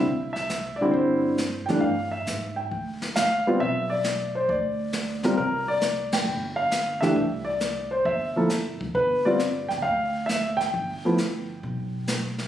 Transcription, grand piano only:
X:1
M:4/4
L:1/8
Q:"Swing" 1/4=135
K:Gmix
V:1 name="Grand piano"
e e2 d c3 g | f e2 g2 z f2 | e d2 c d3 z | _B d2 g2 f2 e- |
e d2 c e3 z | B d2 g f2 e g- | g6 z2 |]
V:2 name="Grand piano"
z3 [D,G,CE]3 z [E,G,A,D] | z6 z [G,B,CF] | z6 z [G,CF_B] | z6 z [E,A,DG] |
z4 z [F,_B,EA] z2 | z [G,B,CF] z6 | z [F,A,B,E] z6 |]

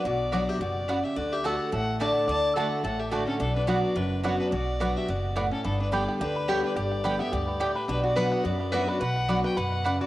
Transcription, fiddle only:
X:1
M:4/4
L:1/8
Q:"Swing" 1/4=214
K:Bm
V:1 name="Fiddle"
d3 e d3 e | d e f2 f2 a2 | a2 f2 f e d A | A B d2 B2 c B |
d3 e d3 A | A B d2 B2 c B | d3 e d3 B | B d f2 d2 e d |
f3 g f3 d |]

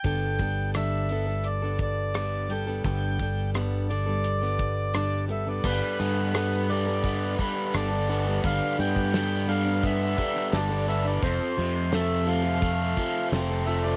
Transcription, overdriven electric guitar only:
X:1
M:4/4
L:1/8
Q:1/4=86
K:Gmix
V:1 name="Overdriven electric guitar"
z8 | z8 | G, B, B, G, B, G, D B, | G, B, B, G, B, G, D B, |
F,, C, A, F, A, F, C A, |]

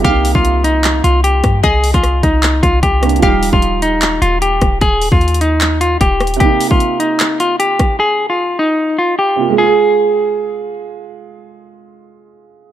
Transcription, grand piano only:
X:1
M:4/4
L:1/8
Q:1/4=151
K:Fm
V:1 name="Grand piano"
[C,B,E]8- | [C,B,E]6- [C,B,E] [C,B,=D] | [F,G,E]8- | [F,G,E]8 |
[C,B,E]8- | [C,B,E]6- [C,B,E] [C,B,F] | [A,FA]8- | [A,FA]8 |]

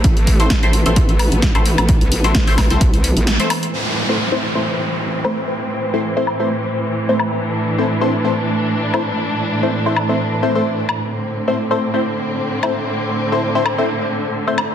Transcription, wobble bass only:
X:1
M:4/4
L:1/16
Q:"Swing 16ths" 1/4=130
K:Am
V:1 name="Wobble bass" clef=bass
A,,,4 A,,,3 A,,,4 A,,,2 A,,,2 A,,,- | A,,, C,, A,,,2 A,,,3 C,,4 A,,,2 z3 | z16 | z16 |
z16 | z16 | z16 | z16 |]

